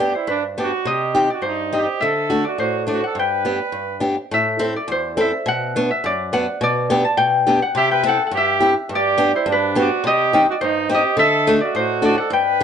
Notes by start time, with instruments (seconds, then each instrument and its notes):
Already playing: steel-string acoustic guitar G2, trumpet G4, harp D5 E5 F#5
0.00 steel-string acoustic guitar B3 D4 G4
0.15 trumpet E4, harp C5
0.27 steel-string acoustic guitar G2, trumpet D4, harp B4
0.58 steel-string acoustic guitar B3 D4 G4, harp D5
0.63 trumpet F#4
0.85 steel-string acoustic guitar C3, harp D#5
0.90 trumpet G4
1.15 steel-string acoustic guitar C4 D#4 G4
1.30 trumpet F#4, harp D5
1.42 steel-string acoustic guitar G2, harp C5
1.47 trumpet D#4
1.73 steel-string acoustic guitar C4 D#4 G4, harp D#5
1.77 trumpet G4
2.01 steel-string acoustic guitar D3, harp E5
2.05 trumpet A4
2.30 steel-string acoustic guitar A3 D4 F#4
2.44 trumpet F#4, harp D5
2.58 steel-string acoustic guitar A2, trumpet F#4, harp C5
2.87 steel-string acoustic guitar A3 D4 F#4, harp D5
2.92 trumpet F#4
3.04 trumpet A4, harp F#5
3.15 steel-string acoustic guitar G2
3.19 trumpet B4, harp G5
3.45 steel-string acoustic guitar B3 D4 G4
3.72 steel-string acoustic guitar G2
4.00 steel-string acoustic guitar B3 D4 G4
4.31 steel-string acoustic guitar A2, harp E5
4.59 steel-string acoustic guitar C4 E4 A4
4.76 harp D5
4.88 steel-string acoustic guitar E2, harp C5
5.17 steel-string acoustic guitar C4 E4 A4, harp E5
5.46 steel-string acoustic guitar B2, harp F#5
5.76 steel-string acoustic guitar B3 D4 F#4
5.91 harp E5
6.04 steel-string acoustic guitar F#2, harp D5
6.33 steel-string acoustic guitar B3 D4 F#4, harp F#5
6.61 steel-string acoustic guitar B2, harp D5
6.90 steel-string acoustic guitar B3 D4 G4
7.05 harp A5
7.17 steel-string acoustic guitar B2, harp G5
7.47 steel-string acoustic guitar B3 D4 G4, harp G5
7.62 harp F#5
7.75 steel-string acoustic guitar C3, trumpet G4, harp E5
7.91 trumpet B4, harp G5
8.03 steel-string acoustic guitar C4 E4 G4, trumpet A4
8.09 harp F#5
8.24 trumpet A4, harp F#5
8.31 steel-string acoustic guitar G2, trumpet G4
8.37 harp E5
8.60 steel-string acoustic guitar C4 E4 G4
8.89 steel-string acoustic guitar G2, trumpet G4
8.95 harp D5
9.18 steel-string acoustic guitar B3 D4 G4
9.35 trumpet E4, harp C5
9.46 steel-string acoustic guitar G2, trumpet D4
9.52 harp B4
9.75 steel-string acoustic guitar B3 D4 G4, trumpet F#4
9.82 harp D5
10.04 steel-string acoustic guitar C3, trumpet G4, harp D#5
10.33 steel-string acoustic guitar C4 D#4 G4
10.50 trumpet F#4, harp D5
10.61 steel-string acoustic guitar G2, trumpet D#4, harp C5
10.89 steel-string acoustic guitar C4 D#4 G4, trumpet G4
10.94 harp D#5
11.17 steel-string acoustic guitar D3, trumpet A4, harp E5
11.47 steel-string acoustic guitar A3 D4 F#4
11.61 trumpet F#4, harp D5
11.75 steel-string acoustic guitar A2, trumpet F#4, harp C5
12.02 steel-string acoustic guitar A3 D4 F#4, trumpet F#4, harp D5
12.18 trumpet A4, harp F#5
12.30 steel-string acoustic guitar G2, trumpet B4, harp G5
12.60 steel-string acoustic guitar B3